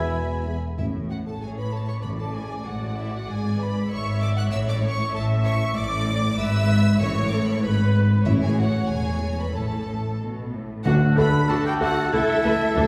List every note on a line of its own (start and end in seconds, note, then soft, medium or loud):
0.00 0.56 E1 medium
0.00 0.56 E2 medium
0.00 0.45 B2 medium
0.00 0.12 E4 medium
0.00 0.14 E4 medium
0.00 0.44 E5 medium
0.00 0.58 E5 medium
0.00 0.44 G#5 medium
0.00 0.56 G#5 medium
0.00 0.44 B5 medium
0.00 0.56 B5 medium
0.46 0.58 B3 medium
0.46 0.57 G#4 medium
0.78 1.34 A1 soft
0.78 1.34 A2 soft
0.78 1.69 A2 medium
0.78 0.86 E4 soft
0.78 0.86 E5 medium
1.09 1.16 F#4 soft
1.09 1.16 F#5 medium
1.26 1.41 A4 soft
1.26 1.42 A5 medium
1.41 1.97 A1 soft
1.41 1.97 A2 soft
1.41 1.57 G#4 medium
1.41 2.00 C#5 medium
1.41 1.48 G#5 medium
1.57 1.73 B4 soft
1.57 1.73 B5 medium
1.71 1.88 A4 medium
1.71 1.88 A5 medium
1.88 1.94 C#5 soft
1.88 1.94 C#6 medium
2.01 2.59 A1 medium
2.01 2.59 A2 medium
2.01 2.94 A2 medium
2.01 2.08 B4 medium
2.01 3.90 D5 medium
2.01 2.09 B5 medium
2.19 2.34 A4 soft
2.19 2.34 A5 medium
2.33 2.65 G#4 medium
2.33 2.66 G#5 medium
2.65 3.21 A1 medium
2.65 3.21 A2 medium
2.65 2.97 F#4 soft
2.65 2.97 F#5 medium
2.97 3.12 E4 medium
2.97 3.13 E5 medium
3.11 3.28 F#4 medium
3.11 3.29 F#5 medium
3.28 3.83 G#1 medium
3.28 3.83 G#2 medium
3.28 3.59 G#4 medium
3.28 3.60 G#5 medium
3.59 3.90 B4 medium
3.59 3.90 B5 medium
3.90 4.45 G#1 medium
3.90 4.45 G#2 medium
3.90 4.20 C#5 medium
3.90 4.51 E5 medium
3.90 4.21 C#6 medium
4.21 4.37 D5 medium
4.21 4.27 D6 medium
4.36 4.42 F#5 medium
4.36 4.43 F#6 medium
4.51 5.08 A1 medium
4.51 5.07 A2 medium
4.51 5.15 C#5 medium
4.51 4.67 E5 medium
4.51 4.58 E6 loud
4.67 4.83 D5 medium
4.67 4.74 D6 medium
4.82 5.14 C#5 medium
4.82 5.14 C#6 medium
5.13 5.70 A1 medium
5.13 5.69 A2 medium
5.13 5.21 A4 medium
5.13 5.77 E5 medium
5.13 5.23 A5 medium
5.44 5.53 C#5 medium
5.44 5.76 C#6 loud
5.76 6.35 A1 medium
5.76 6.35 A2 medium
5.76 6.37 D5 medium
5.76 6.39 D5 medium
5.76 6.39 D6 loud
6.38 7.01 G#1 medium
6.38 7.01 G#2 medium
6.38 7.00 B4 medium
6.38 7.00 E5 loud
6.38 7.02 E6 loud
7.00 7.62 A1 medium
7.00 7.59 A2 medium
7.00 7.62 A2 medium
7.00 7.62 C#5 loud
7.00 7.32 C#5 medium
7.00 7.28 C#6 loud
7.28 7.37 D6 medium
7.32 7.64 A4 medium
7.36 7.46 C#6 medium
7.45 7.55 B5 medium
7.53 7.63 C#6 medium
7.62 8.26 G#1 medium
7.62 8.26 G#2 medium
7.62 7.95 B4 medium
7.62 8.25 B4 medium
7.62 7.94 B5 loud
8.25 8.86 A1 medium
8.25 8.86 A2 medium
8.25 8.41 E4 medium
8.25 9.56 C#5 medium
8.25 8.32 E5 medium
8.42 8.59 G#4 medium
8.42 8.58 G#5 medium
8.58 8.90 F#4 medium
8.58 8.90 F#5 medium
8.89 9.54 E1 medium
8.89 9.54 E2 medium
8.89 9.38 G#4 medium
8.89 9.39 G#5 medium
9.38 9.45 B4 medium
9.38 9.56 B5 medium
9.54 10.65 A1 medium
9.54 10.14 A2 medium
9.54 10.19 A4 medium
9.54 10.52 A4 medium
9.54 10.21 A5 medium
10.20 10.51 B2 medium
10.54 10.86 A2 medium
10.84 10.94 D2 medium
10.84 11.77 D3 loud
10.84 12.87 A3 medium
10.84 12.08 D4 medium
10.84 10.94 D4 medium
10.84 11.18 F#4 loud
10.84 10.94 F#4 medium
10.84 10.93 A4 medium
10.84 12.87 A4 medium
10.84 10.93 F#5 loud
10.84 11.19 F#5 medium
11.16 11.26 D2 medium
11.16 11.29 A3 medium
11.16 11.26 D4 medium
11.16 11.25 F#4 medium
11.16 11.26 F#4 medium
11.16 11.24 A4 medium
11.16 11.29 A4 medium
11.16 11.50 B4 loud
11.16 11.51 B5 medium
11.16 11.49 B5 loud
11.49 11.57 D2 medium
11.49 11.57 D4 medium
11.49 12.09 F#4 medium
11.49 11.57 F#4 medium
11.49 11.58 F#4 medium
11.49 11.65 A4 medium
11.49 11.58 A4 medium
11.49 11.66 A5 loud
11.49 11.67 A5 medium
11.65 11.80 G4 medium
11.65 11.83 G5 medium
11.65 11.73 G5 loud
11.80 11.89 D2 medium
11.80 11.92 A3 medium
11.80 11.89 D4 medium
11.80 11.88 F#4 medium
11.80 12.12 F#4 medium
11.80 11.89 F#4 medium
11.80 11.88 A4 medium
11.80 11.93 A4 medium
11.80 12.13 F#5 medium
11.80 12.13 F#5 loud
12.11 12.21 C#2 medium
12.11 12.21 A3 medium
12.11 12.74 E4 medium
12.11 12.87 E4 loud
12.11 12.21 E4 medium
12.11 12.21 A4 medium
12.11 12.44 A4 medium
12.11 12.87 E5 loud
12.44 12.53 C#2 medium
12.44 12.52 A3 medium
12.44 12.55 A3 medium
12.44 12.52 E4 medium
12.44 12.52 A4 medium
12.44 12.55 A4 medium
12.44 12.52 B4 medium
12.76 12.85 D2 medium
12.76 12.84 F#3 medium
12.76 12.84 D4 medium
12.76 12.87 F#4 medium
12.76 12.87 A4 loud
12.76 12.84 A4 medium